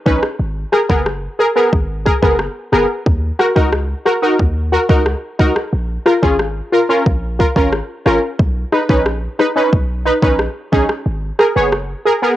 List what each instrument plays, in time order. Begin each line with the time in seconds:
0.06 808-style bass A#1, synth stab C#4 D#4 B4, kick
0.23 cross-stick
0.39 808-style bass G#1
0.72 synth stab G#4 A#4, cross-stick
0.89 808-style bass F#1, synth stab B3 G#4 A#4, kick
1.06 cross-stick
1.39 synth stab G#4 A#4
1.56 synth stab B3 G#4 A#4
1.73 808-style bass G#1, kick
2.05 synth stab G#4 A#4, kick
2.22 808-style bass F#1, synth stab B3 G#4 A#4, kick
2.39 cross-stick
2.72 808-style bass F#1, synth stab B3 G#4 A#4, cross-stick
3.06 808-style bass D#2, kick
3.39 synth stab F#4 A#4, cross-stick
3.56 808-style bass C#2, synth stab D#4 F#4 A#4, kick
3.73 cross-stick
4.06 synth stab F#4 A#4, cross-stick
4.22 synth stab D#4 F#4 A#4
4.39 808-style bass D#2, kick
4.72 synth stab F#4 A#4
4.89 808-style bass C#2, synth stab D#4 F#4 A#4, kick
5.06 cross-stick
5.39 808-style bass C#2, synth stab D#4 F#4 A#4, kick
5.56 cross-stick
5.73 808-style bass A#1
6.06 synth stab F4 A#4, cross-stick
6.22 808-style bass G#1, synth stab C#4 F4 G#4, kick
6.39 cross-stick
6.72 synth stab F4 A#4
6.89 synth stab C#4 F4 A#4
7.06 808-style bass A#1, kick
7.39 synth stab F4 A#4, kick
7.56 808-style bass G#1, synth stab C#4 F4 A#4, kick
7.73 cross-stick
8.06 808-style bass G#1, synth stab C#4 F4 A#4, cross-stick
8.39 808-style bass B1, kick
8.72 synth stab D#4 B4, cross-stick
8.89 808-style bass A#1, synth stab C#4 D#4 B4, kick
9.06 cross-stick
9.39 synth stab D#4 B4, cross-stick
9.56 synth stab C#4 D#4 B4
9.73 808-style bass B1, kick
10.06 synth stab D#4 B4
10.22 808-style bass A#1, synth stab C#4 D#4 B4, kick
10.39 cross-stick
10.72 808-style bass A#1, synth stab C#4 D#4 G#4, kick
10.89 cross-stick
11.06 808-style bass G#1
11.39 synth stab G#4 A#4, cross-stick
11.56 808-style bass F#1, synth stab B3 G#4 C#5
11.72 cross-stick
12.05 synth stab G#4 A#4
12.22 synth stab B3 G#4 A#4